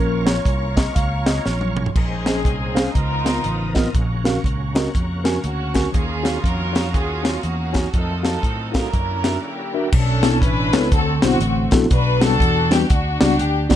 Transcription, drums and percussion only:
0.27 snare, closed hi-hat
0.45 kick, closed hi-hat
0.77 kick, snare, closed hi-hat
0.96 kick, closed hi-hat
1.26 snare, closed hi-hat
1.46 snare
1.61 high tom
1.77 mid tom
1.86 floor tom
1.96 kick, crash
2.26 snare, closed hi-hat
2.45 kick, closed hi-hat
2.76 snare, closed hi-hat
2.95 kick, closed hi-hat
3.26 snare, closed hi-hat
3.44 closed hi-hat
3.75 kick, snare, closed hi-hat
3.95 kick, closed hi-hat
4.25 snare, closed hi-hat
4.44 kick, closed hi-hat
4.75 snare, closed hi-hat
4.95 kick, closed hi-hat
5.25 snare, closed hi-hat
5.44 closed hi-hat
5.75 kick, snare, closed hi-hat
5.94 kick, closed hi-hat
6.25 snare, closed hi-hat
6.44 kick, closed hi-hat
6.75 snare, closed hi-hat
6.94 kick, closed hi-hat
7.25 snare, closed hi-hat
7.43 closed hi-hat
7.74 kick, snare, closed hi-hat
7.94 kick, closed hi-hat
8.25 snare, closed hi-hat
8.43 kick, closed hi-hat
8.74 kick, snare, closed hi-hat
8.93 kick, closed hi-hat
9.24 snare, closed hi-hat
9.92 kick, crash
10.23 snare, closed hi-hat
10.42 kick, closed hi-hat
10.73 snare, closed hi-hat
10.92 kick, closed hi-hat
11.22 snare, closed hi-hat
11.41 closed hi-hat
11.71 kick, snare, closed hi-hat
11.91 kick, closed hi-hat
12.22 snare, closed hi-hat
12.40 kick, closed hi-hat
12.71 snare, closed hi-hat
12.90 kick, closed hi-hat
13.21 snare, closed hi-hat
13.39 closed hi-hat
13.70 kick, snare, closed hi-hat

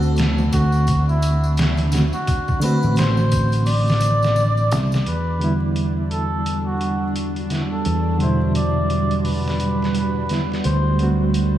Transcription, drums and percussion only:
0.02 tambourine
0.16 snare, closed hi-hat, tambourine
0.38 tambourine
0.52 kick, closed hi-hat, tambourine
0.72 tambourine
0.87 kick, closed hi-hat, tambourine
1.09 tambourine
1.22 closed hi-hat, tambourine
1.44 tambourine
1.57 snare, closed hi-hat, tambourine
1.77 closed hi-hat, tambourine
1.92 snare, closed hi-hat, tambourine
2.13 tambourine
2.27 kick, closed hi-hat, tambourine
2.48 kick, tambourine
2.61 closed hi-hat, tambourine, triangle
2.83 tambourine
2.96 snare, closed hi-hat, tambourine
3.17 tambourine
3.31 kick, closed hi-hat, tambourine
3.52 closed hi-hat, tambourine
3.66 open hi-hat, tambourine
3.88 snare, tambourine
4.01 closed hi-hat, tambourine
4.22 snare, tambourine
4.36 tambourine
4.57 tambourine
4.71 snare, closed hi-hat, tambourine
4.92 snare, tambourine
5.06 closed hi-hat
5.41 closed hi-hat
5.76 closed hi-hat
6.11 closed hi-hat
6.46 closed hi-hat
6.81 closed hi-hat
7.16 closed hi-hat
7.36 closed hi-hat
7.50 snare, closed hi-hat
7.85 closed hi-hat
8.20 closed hi-hat
8.55 closed hi-hat
8.90 closed hi-hat
9.11 closed hi-hat
9.25 open hi-hat
9.48 snare
9.60 closed hi-hat
9.82 snare
9.95 closed hi-hat
10.29 snare, closed hi-hat
10.52 snare
10.64 closed hi-hat
10.99 closed hi-hat
11.34 closed hi-hat

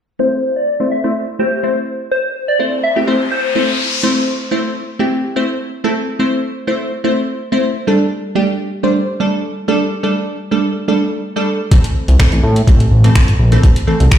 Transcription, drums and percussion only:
11.71 kick, closed hi-hat
11.84 closed hi-hat
12.08 closed hi-hat
12.20 finger snap, kick, closed hi-hat
12.32 closed hi-hat
12.56 closed hi-hat
12.67 kick, closed hi-hat
12.80 closed hi-hat
13.04 closed hi-hat
13.15 finger snap, kick, closed hi-hat
13.28 closed hi-hat
13.52 closed hi-hat
13.63 kick, closed hi-hat
13.76 closed hi-hat
14.00 closed hi-hat
14.11 finger snap, kick, closed hi-hat

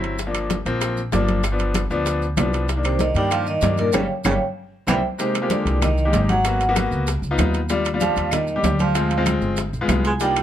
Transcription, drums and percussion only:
0.04 high bongo, high timbale
0.18 high bongo, high conga, high timbale, maracas
0.35 high bongo, high conga, high timbale, claves, maracas
0.50 high bongo, high conga, high timbale, low timbale, maracas
0.66 high conga, high timbale, maracas
0.81 high bongo, high conga, high timbale, claves, maracas
0.97 high conga, maracas
1.12 high bongo, low bongo, high conga, high timbale, low timbale, maracas
1.28 high bongo, high conga, high timbale, maracas
1.43 high bongo, high conga, high timbale, claves, maracas
1.59 high bongo, high conga, high timbale, maracas
1.74 high bongo, high conga, high timbale, low timbale, claves, maracas
1.91 high bongo, high conga, maracas
2.06 high bongo, high conga, high timbale, maracas
2.22 high conga, maracas
2.37 high bongo, low bongo, high conga, high timbale, low timbale, claves, maracas
2.53 high bongo, high timbale, maracas
2.69 high bongo, high conga, high timbale, maracas
2.83 high bongo, high conga, high timbale, claves, maracas
2.99 high bongo, high conga, high timbale, low timbale, maracas
3.15 high bongo, high conga, high timbale, maracas
3.31 high bongo, high conga, high timbale, claves, maracas
3.46 high conga, maracas
3.61 high bongo, low bongo, high conga, high timbale, low timbale, maracas
3.77 high bongo, high conga, high timbale, maracas
3.93 low bongo, high conga, high timbale, claves, maracas
4.24 low bongo, high conga, high timbale, claves, maracas
4.88 low bongo, high conga, high timbale, claves, maracas
5.19 high bongo, high conga, high timbale, maracas
5.35 high bongo, high conga, high timbale, claves, maracas
5.50 high bongo, high conga, high timbale, low timbale, maracas
5.66 high bongo, high conga, high timbale, maracas
5.82 high bongo, high conga, low conga, high timbale, claves, maracas
5.98 high conga, maracas
6.13 high bongo, low bongo, high conga, high timbale, low timbale, maracas
6.29 high bongo, high conga, high timbale, maracas
6.45 high bongo, high conga, high timbale, claves, maracas
6.60 high bongo, high conga, high timbale, maracas
6.76 high bongo, high conga, high timbale, low timbale, claves, maracas
6.92 high bongo, high conga, maracas
7.07 high bongo, high conga, high timbale, maracas
7.23 high conga, maracas
7.38 high bongo, low bongo, high conga, high timbale, low timbale, claves, maracas
7.54 high bongo, high timbale, maracas
7.69 high bongo, high timbale, maracas
7.85 high bongo, high conga, high timbale, claves, maracas
8.00 high bongo, high conga, high timbale, low timbale, maracas
8.16 high bongo, high conga, high timbale, maracas
8.31 high bongo, high conga, low conga, high timbale, claves, maracas
8.47 high conga, maracas
8.64 high bongo, low bongo, high conga, high timbale, low timbale, maracas
8.79 high bongo, high conga, high timbale, maracas
8.95 high bongo, high timbale, claves, maracas
9.10 high bongo, high conga, high timbale, maracas
9.26 high bongo, high conga, high timbale, low timbale, claves, maracas
9.41 high bongo, high conga, maracas
9.57 high bongo, high conga, high timbale, maracas
9.73 high conga, maracas
9.89 high bongo, low bongo, high conga, high timbale, low timbale, claves, maracas
10.04 high bongo, high timbale, maracas
10.20 high bongo, high conga, high timbale, maracas
10.36 high bongo, high conga, high timbale, claves, maracas

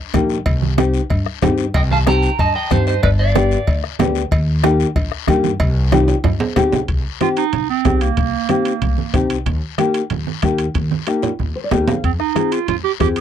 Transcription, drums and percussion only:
0.14 bombo low, bombo rim, cowbell, high conga, short guiro
0.29 short guiro
0.46 bombo low, cowbell, high conga, long guiro
0.62 high conga
0.78 bombo rim, cowbell, high conga, short guiro
0.94 short guiro
1.10 bombo low, cowbell, high conga, long guiro
1.26 bombo rim
1.42 bombo low, bombo rim, cowbell, high conga, low conga, low timbale, short guiro
1.58 short guiro
1.74 bombo low, cowbell, high conga, long guiro
1.91 high conga
2.06 bombo rim, cowbell, high conga, short guiro
2.23 short guiro
2.39 bombo low, cowbell, high conga, long guiro
2.70 bombo low, bombo rim, cowbell, high conga, short guiro
2.87 short guiro
3.03 bombo low, cowbell, high conga, long guiro
3.35 bombo rim, cowbell, high conga, short guiro
3.51 short guiro
3.67 bombo low, cowbell, high conga, long guiro
3.84 bombo rim
3.99 bombo rim, cowbell, high conga, low conga, low timbale, short guiro
4.15 short guiro
4.31 bombo low, cowbell, high conga, long guiro
4.63 bombo rim, cowbell, high conga, short guiro
4.80 short guiro
4.96 bombo low, cowbell, long guiro
5.12 bombo rim
5.27 bombo low, bombo rim, cowbell, high conga, short guiro
5.44 high conga, short guiro
5.60 bombo low, cowbell, high conga, long guiro
5.92 bombo rim, cowbell, high conga, high timbale, short guiro
6.08 high timbale, short guiro
6.24 bombo low, cowbell, low conga, high timbale, long guiro
6.40 low conga, low timbale
6.56 bombo low, bombo rim, cowbell, low conga, low timbale, short guiro
6.72 low conga, low timbale, short guiro
6.88 bombo low, high timbale, long guiro
7.21 bombo rim, high conga, high timbale, short guiro
7.36 high timbale, short guiro
7.53 low conga, high timbale, long guiro
7.85 bombo low, bombo rim, high conga, low conga, high timbale, low timbale, short guiro
8.01 high timbale, short guiro
8.17 bombo low, low conga, high timbale, long guiro
8.49 bombo rim, high conga, high timbale, short guiro
8.65 high timbale, short guiro
8.82 low conga, high timbale, long guiro
8.98 high conga
9.14 bombo low, bombo rim, high conga, low conga, high timbale, short guiro
9.30 high timbale, short guiro
9.46 bombo low, low conga, high timbale, long guiro
9.78 bombo rim, high conga, high timbale, short guiro
9.94 high timbale, short guiro
10.10 low conga, high timbale, long guiro
10.27 high conga
10.42 bombo low, bombo rim, high conga, high timbale, short guiro
10.58 high timbale, short guiro
10.74 bombo low, high conga, high timbale, long guiro
10.91 high conga
11.07 bombo rim, high timbale, short guiro
11.22 low conga, high timbale, short guiro
11.39 low conga, long guiro
11.71 bombo low, bombo rim, low conga, low timbale, short guiro
11.88 low conga, low timbale, short guiro
12.04 bombo low, high timbale, long guiro
12.20 bombo rim
12.36 bombo rim, high conga, high timbale, short guiro
12.52 high timbale, short guiro
12.68 low conga, high timbale, long guiro
13.00 bombo low, bombo rim, high conga, high timbale, short guiro
13.16 high timbale, short guiro

